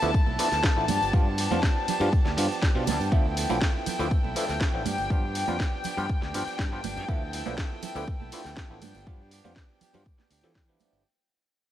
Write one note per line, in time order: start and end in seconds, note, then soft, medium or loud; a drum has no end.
0.00 0.12 D2 medium
0.00 0.11 F3 medium
0.00 0.11 A3 medium
0.00 0.11 B3 medium
0.00 0.11 D4 medium
0.00 0.11 E4 loud
0.00 0.27 E4 medium
0.00 0.25 A4 medium
0.00 3.13 A5 medium
0.00 tambourine medium
0.04 0.28 B3 medium
0.14 kick loud
0.14 tambourine soft
0.26 0.36 B1 medium
0.26 0.38 B3 soft
0.26 0.39 E4 medium
0.26 0.39 A4 medium
0.26 high conga medium
0.39 0.62 F3 medium
0.39 0.48 F3 medium
0.39 0.48 A3 medium
0.39 0.48 B3 medium
0.39 0.63 B3 medium
0.39 0.48 D4 medium
0.39 0.49 E4 loud
0.39 0.64 E4 medium
0.39 0.64 A4 medium
0.39 open hi-hat loud
0.39 ride medium
0.39 tambourine loud
0.52 0.61 D2 medium
0.52 snare soft
0.52 tambourine medium
0.63 0.87 F3 medium
0.63 0.88 B3 medium
0.63 0.89 E4 loud
0.63 0.89 A4 loud
0.63 kick loud
0.63 snare loud
0.76 0.86 A1 medium
0.76 0.85 F3 medium
0.76 0.85 A3 medium
0.76 0.85 B3 medium
0.76 0.85 D4 medium
0.76 0.86 E4 loud
0.88 0.98 G2 loud
0.88 1.12 F3 medium
0.88 1.13 B3 medium
0.88 1.13 D4 medium
0.88 1.14 G4 medium
0.88 open hi-hat loud
0.88 ride medium
0.88 tambourine medium
0.88 high conga loud
0.88 low conga medium
1.01 1.11 G1 medium
1.01 tambourine medium
1.13 1.46 G2 loud
1.13 1.28 F3 medium
1.13 1.36 F3 medium
1.13 1.28 G3 medium
1.13 1.28 B3 medium
1.13 1.37 B3 medium
1.13 1.28 D4 medium
1.13 1.38 D4 medium
1.13 1.28 F4 medium
1.13 1.39 G4 medium
1.13 kick loud
1.13 tambourine soft
1.38 1.61 F3 medium
1.38 1.62 B3 medium
1.38 1.63 D4 medium
1.38 1.63 G4 medium
1.38 open hi-hat loud
1.38 ride medium
1.38 tambourine medium
1.51 1.60 F2 medium
1.51 1.60 F3 medium
1.51 1.60 G3 medium
1.51 1.60 B3 medium
1.51 1.60 D4 medium
1.51 1.60 F4 medium
1.51 tambourine soft
1.51 high conga medium
1.63 1.87 B3 medium
1.63 1.88 D4 loud
1.63 1.89 G4 loud
1.63 kick loud
1.63 snare loud
1.63 tambourine soft
1.87 2.00 F3 medium
1.87 2.01 B3 medium
1.87 2.00 D4 medium
1.87 1.99 G4 medium
1.87 muted fingered electric bass stroke soft
1.87 open hi-hat loud
1.87 ride medium
1.87 tambourine medium
1.87 low conga medium
2.00 2.10 G2 medium
2.00 2.09 F3 medium
2.00 2.09 G3 medium
2.00 2.09 B3 medium
2.00 2.27 B3 medium
2.00 2.09 D4 medium
2.00 2.25 D4 medium
2.00 2.09 F4 medium
2.00 2.24 G4 medium
2.00 tambourine soft
2.13 kick loud
2.13 tambourine soft
2.25 2.35 D2 medium
2.25 2.37 B3 medium
2.25 2.38 D4 medium
2.25 2.37 G4 medium
2.25 snare soft
2.25 high conga medium
2.37 2.47 G2 loud
2.37 2.60 F3 medium
2.37 2.46 F3 medium
2.37 2.47 G3 medium
2.37 2.47 B3 medium
2.37 2.61 B3 medium
2.37 2.47 D4 medium
2.37 2.62 D4 medium
2.37 2.47 F4 loud
2.37 2.62 G4 medium
2.37 open hi-hat loud
2.37 ride medium
2.37 tambourine medium
2.52 tambourine medium
2.62 2.85 F3 loud
2.62 2.87 D4 medium
2.62 2.88 G4 loud
2.62 muted fingered electric bass stroke soft
2.62 kick loud
2.62 snare loud
2.62 tambourine soft
2.75 2.88 B2 medium
2.75 2.84 F3 loud
2.75 2.84 G3 medium
2.75 2.84 B3 medium
2.75 2.84 D4 medium
2.75 2.84 F4 loud
2.86 2.97 D2 medium
2.86 3.10 F3 medium
2.86 3.11 B3 medium
2.86 3.12 D4 medium
2.86 3.13 G4 medium
2.86 open hi-hat medium
2.86 ride medium
2.86 tambourine medium
2.86 high conga medium
2.86 low conga medium
3.00 3.09 G2 medium
3.00 tambourine medium
3.11 3.45 D2 loud
3.11 3.35 F3 medium
3.11 3.26 F3 medium
3.11 3.26 A3 medium
3.11 3.36 B3 medium
3.11 3.27 B3 medium
3.11 3.27 D4 medium
3.11 3.27 E4 medium
3.11 3.37 E4 loud
3.11 3.37 A4 loud
3.11 11.07 G5 medium
3.11 kick loud
3.11 tambourine soft
3.36 3.60 F3 medium
3.36 3.60 B3 medium
3.36 3.61 E4 medium
3.36 3.62 A4 medium
3.36 open hi-hat loud
3.36 ride medium
3.36 tambourine medium
3.49 3.59 B1 medium
3.49 3.58 F3 medium
3.49 3.58 A3 medium
3.49 3.58 B3 medium
3.49 3.58 D4 medium
3.49 3.58 E4 medium
3.49 tambourine medium
3.49 high conga medium
3.61 3.84 F3 medium
3.61 3.85 B3 loud
3.61 3.86 E4 loud
3.61 3.87 A4 loud
3.61 kick loud
3.61 snare loud
3.61 tambourine soft
3.86 3.99 F3 medium
3.86 3.99 B3 medium
3.86 3.99 E4 medium
3.86 3.97 A4 medium
3.86 muted fingered electric bass stroke soft
3.86 open hi-hat medium
3.86 ride medium
3.86 tambourine medium
3.86 low conga medium
3.98 4.08 D2 loud
3.98 4.08 F3 medium
3.98 4.08 A3 medium
3.98 4.08 B3 medium
3.98 4.25 B3 medium
3.98 4.08 D4 medium
3.98 4.24 E4 medium
3.98 4.08 E4 loud
3.98 4.22 A4 medium
3.98 tambourine medium
4.11 kick loud
4.11 tambourine soft
4.23 4.33 B1 medium
4.23 4.35 B3 soft
4.23 4.36 E4 medium
4.23 4.36 A4 medium
4.23 high conga medium
4.35 4.59 F3 medium
4.35 4.45 F3 loud
4.35 4.45 A3 medium
4.35 4.60 B3 medium
4.35 4.45 B3 medium
4.35 4.45 D4 medium
4.35 4.45 E4 loud
4.35 4.61 E4 medium
4.35 4.61 A4 medium
4.35 open hi-hat loud
4.35 ride medium
4.35 tambourine medium
4.49 4.58 D2 medium
4.49 snare soft
4.49 tambourine medium
4.60 4.84 B3 loud
4.60 4.86 E4 medium
4.60 4.86 A4 loud
4.60 kick loud
4.60 snare loud
4.60 tambourine soft
4.74 4.83 A1 medium
4.74 4.82 F3 loud
4.74 4.82 A3 medium
4.74 4.82 B3 medium
4.74 4.82 D4 medium
4.74 4.83 E4 loud
4.85 4.95 G2 medium
4.85 5.09 F3 medium
4.85 5.09 B3 medium
4.85 5.10 D4 medium
4.85 5.11 G4 medium
4.85 open hi-hat medium
4.85 ride medium
4.85 tambourine medium
4.85 high conga medium
4.85 low conga medium
4.98 5.07 G1 medium
4.98 tambourine medium
5.10 5.43 G2 loud
5.10 5.33 F3 medium
5.10 5.25 F3 medium
5.10 5.25 G3 medium
5.10 5.34 B3 medium
5.10 5.25 B3 medium
5.10 5.25 D4 medium
5.10 5.35 D4 loud
5.10 5.25 F4 medium
5.10 5.36 G4 loud
5.10 kick loud
5.10 tambourine soft
5.34 5.58 F3 medium
5.34 5.59 B3 medium
5.34 5.60 D4 medium
5.34 5.60 G4 medium
5.34 open hi-hat loud
5.34 ride medium
5.34 tambourine medium
5.48 5.57 F2 medium
5.48 5.56 F3 medium
5.48 5.57 G3 medium
5.48 5.57 B3 medium
5.48 5.57 D4 medium
5.48 5.57 F4 medium
5.48 tambourine medium
5.48 high conga medium
5.60 5.83 F3 medium
5.60 5.84 B3 loud
5.60 5.85 D4 medium
5.60 5.85 G4 loud
5.60 kick loud
5.60 snare loud
5.60 tambourine soft
5.84 5.97 F3 medium
5.84 5.98 B3 medium
5.84 5.97 D4 medium
5.84 5.95 G4 medium
5.84 muted fingered electric bass stroke soft
5.84 open hi-hat loud
5.84 ride medium
5.84 tambourine medium
5.84 low conga medium
5.97 6.07 G2 loud
5.97 6.06 F3 medium
5.97 6.06 G3 medium
5.97 6.06 B3 medium
5.97 6.23 B3 medium
5.97 6.06 D4 medium
5.97 6.06 F4 medium
5.97 6.20 G4 medium
5.97 tambourine medium
6.09 kick loud
6.09 tambourine soft
6.21 6.31 D2 medium
6.21 6.33 B3 medium
6.21 6.34 D4 medium
6.21 6.34 G4 medium
6.21 snare soft
6.21 high conga medium
6.33 6.44 G2 loud
6.33 6.57 F3 medium
6.33 6.43 F3 medium
6.33 6.44 G3 medium
6.33 6.58 B3 medium
6.33 6.44 B3 medium
6.33 6.44 D4 medium
6.33 6.59 D4 medium
6.33 6.44 F4 loud
6.33 6.59 G4 medium
6.33 open hi-hat loud
6.33 ride medium
6.33 tambourine loud
6.47 muted fingered electric bass stroke soft
6.47 tambourine soft
6.59 6.78 G2 loud
6.59 6.82 F3 medium
6.59 6.83 B3 loud
6.59 6.84 D4 loud
6.59 6.85 G4 loud
6.59 kick loud
6.59 snare loud
6.59 tambourine soft
6.72 6.80 F3 medium
6.72 6.81 G3 medium
6.72 6.81 B3 medium
6.72 6.81 D4 medium
6.72 6.81 F4 loud
6.83 6.98 G1 medium
6.83 7.07 F3 medium
6.83 7.08 B3 medium
6.83 7.09 D4 medium
6.83 7.09 G4 medium
6.83 open hi-hat medium
6.83 ride medium
6.83 tambourine medium
6.83 high conga medium
6.83 low conga medium
6.96 7.06 G2 medium
6.96 tambourine medium
7.08 7.41 D2 loud
7.08 7.31 F3 medium
7.08 7.23 F3 medium
7.08 7.23 A3 medium
7.08 7.32 B3 medium
7.08 7.23 B3 medium
7.08 7.23 D4 medium
7.08 7.33 E4 medium
7.08 7.23 E4 medium
7.08 7.34 A4 loud
7.08 kick loud
7.08 tambourine soft
7.33 7.56 F3 medium
7.33 7.57 B3 medium
7.33 7.58 E4 medium
7.33 7.58 A4 medium
7.33 open hi-hat loud
7.33 ride medium
7.33 tambourine medium
7.46 7.55 B1 medium
7.46 7.55 F3 medium
7.46 7.55 A3 medium
7.46 7.55 B3 medium
7.46 7.55 D4 medium
7.46 7.55 E4 medium
7.46 tambourine medium
7.46 high conga medium
7.58 7.81 F3 medium
7.58 7.82 B3 loud
7.58 7.83 E4 loud
7.58 7.83 A4 loud
7.58 kick loud
7.58 snare loud
7.58 tambourine soft
7.82 7.95 F3 medium
7.82 7.96 B3 medium
7.82 7.95 E4 medium
7.82 7.94 A4 medium
7.82 muted fingered electric bass stroke soft
7.82 open hi-hat medium
7.82 ride medium
7.82 tambourine medium
7.82 low conga medium
7.95 8.05 D2 medium
7.95 8.04 F3 medium
7.95 8.04 A3 medium
7.95 8.04 B3 medium
7.95 8.21 B3 medium
7.95 8.04 D4 medium
7.95 8.05 E4 loud
7.95 8.20 E4 medium
7.95 8.19 A4 medium
7.95 tambourine medium
8.08 muted fingered electric bass stroke soft
8.08 kick loud
8.20 8.30 B1 medium
8.20 8.32 B3 medium
8.20 8.33 E4 medium
8.20 8.32 A4 medium
8.20 high conga medium
8.32 8.56 F3 medium
8.32 8.42 F3 loud
8.32 8.42 A3 medium
8.32 8.42 B3 medium
8.32 8.57 B3 medium
8.32 8.42 D4 medium
8.32 8.42 E4 loud
8.32 8.57 E4 medium
8.32 8.58 A4 medium
8.32 open hi-hat loud
8.32 ride medium
8.32 tambourine loud
8.45 8.54 D2 medium
8.45 snare soft
8.45 tambourine medium
8.57 8.83 A4 loud
8.57 kick loud
8.57 snare loud
8.57 tambourine soft
8.70 8.79 A1 medium
8.70 8.79 F3 loud
8.70 8.79 A3 medium
8.70 8.79 B3 medium
8.70 8.79 D4 medium
8.70 8.79 E4 loud
8.82 8.92 G2 loud
8.82 9.05 F3 medium
8.82 9.06 B3 medium
8.82 9.07 D4 medium
8.82 9.07 G4 medium
8.82 open hi-hat medium
8.82 ride medium
8.82 tambourine medium
8.82 high conga medium
8.82 low conga medium
8.95 9.04 G1 medium
8.95 tambourine medium
9.06 9.40 G2 loud
9.06 9.30 F3 medium
9.06 9.21 F3 medium
9.06 9.21 G3 medium
9.06 9.31 B3 medium
9.06 9.22 B3 medium
9.06 9.22 D4 medium
9.06 9.32 D4 loud
9.06 9.22 F4 medium
9.06 9.32 G4 loud
9.06 kick loud
9.06 tambourine soft
9.31 9.55 F3 medium
9.31 9.55 B3 medium
9.31 9.56 D4 medium
9.31 9.57 G4 medium
9.31 open hi-hat loud
9.31 ride medium
9.31 tambourine loud
9.44 9.54 F2 medium
9.44 9.53 F3 medium
9.44 9.53 G3 medium
9.44 9.53 B3 medium
9.44 9.53 D4 medium
9.44 9.53 F4 medium
9.44 tambourine medium
9.44 high conga medium
9.56 9.80 B3 loud
9.56 9.81 D4 loud
9.56 9.82 G4 medium
9.56 kick loud
9.56 snare loud
9.56 tambourine soft
9.80 9.94 F3 medium
9.80 9.94 B3 medium
9.80 9.94 D4 medium
9.80 9.92 G4 medium
9.80 muted fingered electric bass stroke soft
9.80 open hi-hat loud
9.80 ride medium
9.80 tambourine loud
9.80 low conga medium
9.93 10.03 G2 medium
9.93 10.03 F3 medium
9.93 10.03 G3 medium
9.93 10.03 B3 medium
9.93 10.03 D4 medium
9.93 10.18 D4 medium
9.93 10.03 F4 loud
9.93 10.17 G4 medium
9.93 tambourine medium
9.93 low conga medium
10.06 kick loud
10.18 10.30 B3 medium
10.18 10.31 D4 medium
10.18 10.31 G4 medium
10.18 muted fingered electric bass stroke soft
10.18 snare soft
10.18 high conga medium
10.30 10.41 D2 medium
10.30 10.54 F3 medium
10.30 10.54 B3 medium
10.30 10.55 D4 medium
10.30 10.56 G4 medium
10.30 open hi-hat loud
10.30 ride medium
10.30 tambourine loud
10.43 10.76 E3 loud
10.43 10.52 F3 loud
10.43 10.52 G3 medium
10.43 10.52 B3 medium
10.43 10.52 D4 medium
10.43 10.53 A4 loud
10.43 tambourine medium
10.55 10.81 G4 loud
10.55 kick loud
10.55 snare loud
10.68 11.02 F3 medium
10.68 11.03 G3 medium
10.68 11.03 B3 medium
10.68 11.03 D4 medium
10.68 11.03 E4 loud
10.80 11.05 F3 medium
10.80 11.05 B3 medium
10.80 11.06 D4 medium
10.80 11.06 G4 medium
10.80 open hi-hat medium
10.80 ride medium
10.80 tambourine loud
10.80 high conga medium
10.80 low conga medium
10.93 11.02 G1 loud
10.93 tambourine medium